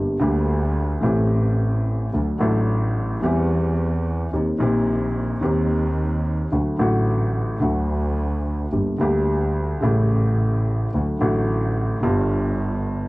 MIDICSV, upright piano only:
0, 0, Header, 1, 2, 480
1, 0, Start_track
1, 0, Key_signature, -2, "minor"
1, 0, Tempo, 548948
1, 1874, Time_signature, 4, 2, 24, 8
1, 11439, End_track
2, 0, Start_track
2, 0, Title_t, "Upright piano"
2, 0, Program_c, 0, 0
2, 0, Note_on_c, 0, 31, 57
2, 0, Note_on_c, 0, 43, 60
2, 0, Note_on_c, 0, 50, 55
2, 0, Note_on_c, 0, 55, 49
2, 0, Note_on_c, 0, 58, 48
2, 0, Note_on_c, 0, 67, 55
2, 142, Note_off_c, 0, 50, 0
2, 142, Note_off_c, 0, 55, 0
2, 143, Note_off_c, 0, 31, 0
2, 144, Note_off_c, 0, 43, 0
2, 144, Note_off_c, 0, 58, 0
2, 145, Note_off_c, 0, 67, 0
2, 171, Note_on_c, 0, 50, 95
2, 180, Note_on_c, 0, 55, 68
2, 187, Note_on_c, 0, 38, 87
2, 194, Note_on_c, 0, 58, 70
2, 204, Note_on_c, 0, 67, 78
2, 869, Note_off_c, 0, 55, 0
2, 872, Note_off_c, 0, 50, 0
2, 873, Note_off_c, 0, 38, 0
2, 876, Note_off_c, 0, 58, 0
2, 881, Note_off_c, 0, 67, 0
2, 881, Note_on_c, 0, 52, 75
2, 893, Note_on_c, 0, 57, 66
2, 899, Note_on_c, 0, 33, 82
2, 902, Note_on_c, 0, 45, 86
2, 906, Note_on_c, 0, 60, 72
2, 920, Note_on_c, 0, 67, 77
2, 1812, Note_off_c, 0, 52, 0
2, 1818, Note_off_c, 0, 57, 0
2, 1821, Note_off_c, 0, 33, 0
2, 1823, Note_off_c, 0, 45, 0
2, 1825, Note_off_c, 0, 60, 0
2, 1832, Note_off_c, 0, 67, 0
2, 1863, Note_on_c, 0, 38, 62
2, 1865, Note_on_c, 0, 50, 59
2, 1865, Note_on_c, 0, 54, 53
2, 1866, Note_on_c, 0, 62, 51
2, 1867, Note_on_c, 0, 57, 45
2, 1872, Note_on_c, 0, 69, 61
2, 2071, Note_off_c, 0, 38, 0
2, 2072, Note_off_c, 0, 50, 0
2, 2072, Note_off_c, 0, 54, 0
2, 2072, Note_off_c, 0, 62, 0
2, 2073, Note_off_c, 0, 57, 0
2, 2075, Note_off_c, 0, 69, 0
2, 2086, Note_on_c, 0, 54, 76
2, 2095, Note_on_c, 0, 57, 71
2, 2102, Note_on_c, 0, 45, 88
2, 2104, Note_on_c, 0, 33, 96
2, 2110, Note_on_c, 0, 62, 71
2, 2121, Note_on_c, 0, 69, 86
2, 2783, Note_off_c, 0, 54, 0
2, 2788, Note_off_c, 0, 57, 0
2, 2792, Note_off_c, 0, 33, 0
2, 2792, Note_off_c, 0, 45, 0
2, 2795, Note_off_c, 0, 62, 0
2, 2801, Note_off_c, 0, 69, 0
2, 2806, Note_on_c, 0, 52, 70
2, 2819, Note_off_c, 0, 52, 0
2, 2821, Note_on_c, 0, 55, 67
2, 2826, Note_on_c, 0, 40, 86
2, 2826, Note_on_c, 0, 52, 86
2, 2833, Note_on_c, 0, 60, 70
2, 2845, Note_on_c, 0, 67, 84
2, 3736, Note_off_c, 0, 55, 0
2, 3739, Note_off_c, 0, 40, 0
2, 3739, Note_off_c, 0, 52, 0
2, 3743, Note_off_c, 0, 60, 0
2, 3749, Note_off_c, 0, 67, 0
2, 3787, Note_on_c, 0, 51, 66
2, 3792, Note_on_c, 0, 39, 61
2, 3792, Note_on_c, 0, 67, 61
2, 3793, Note_on_c, 0, 58, 50
2, 3795, Note_on_c, 0, 60, 48
2, 3992, Note_off_c, 0, 39, 0
2, 3992, Note_off_c, 0, 67, 0
2, 3993, Note_off_c, 0, 58, 0
2, 3993, Note_off_c, 0, 60, 0
2, 3994, Note_off_c, 0, 51, 0
2, 4008, Note_on_c, 0, 51, 79
2, 4016, Note_on_c, 0, 58, 70
2, 4020, Note_on_c, 0, 34, 98
2, 4023, Note_on_c, 0, 46, 97
2, 4029, Note_on_c, 0, 60, 75
2, 4042, Note_on_c, 0, 67, 84
2, 4699, Note_off_c, 0, 51, 0
2, 4703, Note_off_c, 0, 58, 0
2, 4705, Note_off_c, 0, 34, 0
2, 4706, Note_off_c, 0, 46, 0
2, 4710, Note_off_c, 0, 60, 0
2, 4716, Note_off_c, 0, 67, 0
2, 4730, Note_on_c, 0, 51, 83
2, 4740, Note_on_c, 0, 58, 68
2, 4743, Note_on_c, 0, 39, 89
2, 4749, Note_on_c, 0, 60, 73
2, 4760, Note_on_c, 0, 67, 81
2, 5652, Note_off_c, 0, 58, 0
2, 5653, Note_off_c, 0, 39, 0
2, 5654, Note_off_c, 0, 51, 0
2, 5657, Note_off_c, 0, 60, 0
2, 5662, Note_off_c, 0, 67, 0
2, 5697, Note_on_c, 0, 50, 60
2, 5698, Note_on_c, 0, 54, 46
2, 5701, Note_on_c, 0, 38, 66
2, 5703, Note_on_c, 0, 57, 49
2, 5706, Note_on_c, 0, 66, 60
2, 5902, Note_off_c, 0, 54, 0
2, 5903, Note_off_c, 0, 38, 0
2, 5904, Note_off_c, 0, 50, 0
2, 5904, Note_off_c, 0, 57, 0
2, 5906, Note_off_c, 0, 66, 0
2, 5923, Note_on_c, 0, 50, 71
2, 5935, Note_on_c, 0, 54, 70
2, 5939, Note_on_c, 0, 45, 80
2, 5940, Note_on_c, 0, 33, 93
2, 5946, Note_on_c, 0, 57, 71
2, 5959, Note_on_c, 0, 66, 91
2, 6618, Note_off_c, 0, 50, 0
2, 6624, Note_off_c, 0, 54, 0
2, 6626, Note_off_c, 0, 45, 0
2, 6627, Note_off_c, 0, 33, 0
2, 6630, Note_off_c, 0, 57, 0
2, 6636, Note_off_c, 0, 66, 0
2, 6645, Note_on_c, 0, 50, 90
2, 6653, Note_on_c, 0, 54, 66
2, 6661, Note_on_c, 0, 38, 76
2, 6666, Note_on_c, 0, 57, 62
2, 6677, Note_on_c, 0, 66, 72
2, 7579, Note_off_c, 0, 54, 0
2, 7581, Note_off_c, 0, 50, 0
2, 7582, Note_off_c, 0, 38, 0
2, 7585, Note_off_c, 0, 57, 0
2, 7590, Note_off_c, 0, 66, 0
2, 7626, Note_on_c, 0, 50, 53
2, 7627, Note_on_c, 0, 55, 48
2, 7628, Note_on_c, 0, 58, 46
2, 7629, Note_on_c, 0, 31, 58
2, 7629, Note_on_c, 0, 43, 58
2, 7632, Note_on_c, 0, 67, 53
2, 7832, Note_off_c, 0, 50, 0
2, 7833, Note_off_c, 0, 43, 0
2, 7833, Note_off_c, 0, 55, 0
2, 7833, Note_off_c, 0, 58, 0
2, 7834, Note_off_c, 0, 31, 0
2, 7835, Note_off_c, 0, 67, 0
2, 7854, Note_on_c, 0, 50, 81
2, 7867, Note_off_c, 0, 50, 0
2, 7868, Note_on_c, 0, 55, 70
2, 7873, Note_on_c, 0, 50, 84
2, 7875, Note_on_c, 0, 38, 88
2, 7880, Note_on_c, 0, 58, 71
2, 7893, Note_on_c, 0, 67, 86
2, 8558, Note_off_c, 0, 55, 0
2, 8561, Note_off_c, 0, 38, 0
2, 8561, Note_off_c, 0, 50, 0
2, 8564, Note_off_c, 0, 58, 0
2, 8570, Note_off_c, 0, 67, 0
2, 8575, Note_on_c, 0, 49, 74
2, 8586, Note_on_c, 0, 55, 64
2, 8590, Note_on_c, 0, 45, 92
2, 8593, Note_on_c, 0, 33, 85
2, 8599, Note_on_c, 0, 57, 63
2, 8610, Note_on_c, 0, 64, 75
2, 9500, Note_off_c, 0, 49, 0
2, 9505, Note_off_c, 0, 55, 0
2, 9507, Note_off_c, 0, 45, 0
2, 9508, Note_off_c, 0, 33, 0
2, 9511, Note_off_c, 0, 57, 0
2, 9517, Note_off_c, 0, 64, 0
2, 9559, Note_on_c, 0, 50, 59
2, 9564, Note_on_c, 0, 57, 48
2, 9565, Note_on_c, 0, 54, 49
2, 9567, Note_on_c, 0, 38, 58
2, 9568, Note_on_c, 0, 66, 60
2, 9761, Note_off_c, 0, 50, 0
2, 9762, Note_off_c, 0, 54, 0
2, 9762, Note_off_c, 0, 57, 0
2, 9764, Note_off_c, 0, 38, 0
2, 9764, Note_off_c, 0, 66, 0
2, 9785, Note_on_c, 0, 50, 73
2, 9795, Note_on_c, 0, 54, 67
2, 9801, Note_on_c, 0, 33, 91
2, 9803, Note_on_c, 0, 45, 88
2, 9811, Note_on_c, 0, 57, 70
2, 9818, Note_on_c, 0, 66, 82
2, 10471, Note_off_c, 0, 50, 0
2, 10477, Note_off_c, 0, 54, 0
2, 10480, Note_off_c, 0, 33, 0
2, 10481, Note_off_c, 0, 45, 0
2, 10484, Note_off_c, 0, 57, 0
2, 10488, Note_off_c, 0, 66, 0
2, 10501, Note_on_c, 0, 50, 74
2, 10515, Note_on_c, 0, 55, 66
2, 10519, Note_on_c, 0, 43, 95
2, 10522, Note_on_c, 0, 31, 89
2, 10523, Note_on_c, 0, 59, 69
2, 10540, Note_on_c, 0, 65, 75
2, 11414, Note_off_c, 0, 50, 0
2, 11420, Note_off_c, 0, 55, 0
2, 11423, Note_off_c, 0, 43, 0
2, 11424, Note_off_c, 0, 31, 0
2, 11425, Note_off_c, 0, 59, 0
2, 11433, Note_off_c, 0, 65, 0
2, 11439, End_track
0, 0, End_of_file